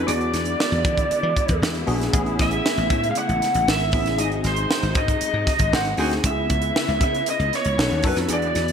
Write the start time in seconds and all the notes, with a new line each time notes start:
0.06 E2 D3 G#3 B3 D4 E4 F#4 G#4 D5, closed hi-hat
0.21 closed hi-hat
0.34 E2, snare, closed hi-hat
0.45 closed hi-hat
0.60 snare
0.72 E2, closed hi-hat
0.85 E3, kick, closed hi-hat
0.98 kick, closed hi-hat
1.10 muted slap bass stroke, closed hi-hat
1.23 E3
1.36 kick, closed hi-hat
1.48 E2, kick, closed hi-hat
1.62 E2, snare
1.75 closed hi-hat
1.87 A#1 B3 D4 F#4 G#4, open hi-hat
2.01 snare, closed hi-hat
2.13 A1 C#3 A3 B3 C#4 E4 G#4, kick, closed hi-hat
2.26 closed hi-hat
2.39 A1 E5, kick, snare, closed hi-hat
2.51 closed hi-hat
2.66 snare
2.78 A1, closed hi-hat
2.90 A2, kick, closed hi-hat
3.04 closed hi-hat
3.11 F5
3.15 F#5, closed hi-hat
3.29 A1, closed hi-hat
3.42 snare, closed hi-hat
3.55 A1, closed hi-hat
3.67 G#1 E5, snare
3.80 closed hi-hat
3.92 A1 B3 C#4 E4 G#4, kick, open hi-hat
4.06 snare, closed hi-hat
4.17 G#1 C3 F#3 G#3 A3 D#4 F#4 G#4 D#5, closed hi-hat
4.23 C4
4.32 closed hi-hat
4.44 G#1 C5, snare, closed hi-hat
4.56 closed hi-hat
4.71 snare
4.83 G#1, closed hi-hat
4.95 G#2 D#5, kick, closed hi-hat
5.08 kick, closed hi-hat
5.21 muted slap bass stroke, closed hi-hat
5.34 G#2
5.47 kick, snare, closed hi-hat
5.59 G#1, kick, closed hi-hat
5.72 G#1 C4 F#4 G#4 C5 F#5, snare
5.85 closed hi-hat
5.97 D2 C4 D#4 F#4 G#4 C5 G#5, open hi-hat
6.11 snare, closed hi-hat
6.23 C#2 C#3 B3 C#4 E4 F#4 E5, kick, closed hi-hat
6.30 G#4
6.50 C#2, kick, closed hi-hat
6.62 closed hi-hat
6.76 snare
6.88 C#2, closed hi-hat
7.01 C#3 E5, kick, closed hi-hat
7.15 closed hi-hat
7.26 D#5, closed hi-hat
7.39 C#2, closed hi-hat
7.53 C#5, snare, closed hi-hat
7.65 C#2, closed hi-hat
7.78 B1 D#3 A3 C#4 D#4 F#4 A4, snare
7.90 D#2, closed hi-hat
8.02 F#2 C#4 D#4 F#4 A4, kick, open hi-hat
8.07 B4
8.16 F2, snare, closed hi-hat
8.28 E2 D3 G#3 B3 D4 E4 F#4 G#4, closed hi-hat
8.33 D5
8.42 closed hi-hat
8.55 E2, snare, closed hi-hat
8.68 closed hi-hat